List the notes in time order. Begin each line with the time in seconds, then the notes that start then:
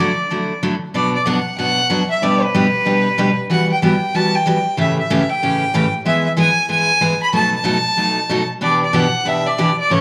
Already playing: D5
0.00 D3 F#3 A3 E4 F#4
0.30 D3 F#3 A3 E4 F#4
0.63 D3 F#3 A3 E4 F#4
0.94 B2 F#3 B3 D4 F#4 D5
1.15 D5
1.26 B2 F#3 B3 D4 F#4 F#5
1.58 B2 F#3 B3 D4 F#4 F#5
1.90 B2 F#3 B3 D4 F#4
2.10 E5
2.22 B2 G3 B3 D4 G4 B4 D5
2.44 B4
2.55 B2 G3 B3 D4 G4 B4
2.85 B2 G3 B3 D4 G4 B4
3.18 B2 G3 B3 D4 G4 B4
3.50 E3 G3 B3 F#4 F#5
3.72 G5
3.82 E3 G3 B3 F#4 G5
4.14 E3 G3 B3 F#4 A5
4.35 G5
4.46 E3 G3 B3 F#4
4.77 A2 C#3 E3 A3 C#4 G4 E5
4.99 E5
5.10 A2 C#3 E3 A3 C#4 G4
5.30 G5
5.42 A2 C#3 E3 A3 C#4 G4
5.74 A2 C#3 E3 A3 C#4 G4
6.05 E3 G#3 B3 E4 G#4 E5
6.26 E5
6.37 E3 G#3 B3 E4 G#4 G#5
6.69 E3 G#3 B3 E4 G#4 G#5
7.01 E3 G#3 B3 E4 G#4
7.23 B5
7.33 B2 F#3 A3 D#4 F#4 A5
7.55 A5
7.64 B2 F#3 A3 D#4 F#4
7.97 B2 F#3 A3 D#4 F#4
8.29 B2 F#3 A3 D#4 F#4
8.61 B2 E3 B3 D4 G4 D5
8.83 D5
8.93 B2 E3 B3 D4 G4 F#5
9.25 B2 E3 B3 D4 G4 E5
9.47 D5
9.58 B2 E3 B3 D4 G4
9.80 D5
9.90 A2 C#3 E3 A3 C#4 A4 C#5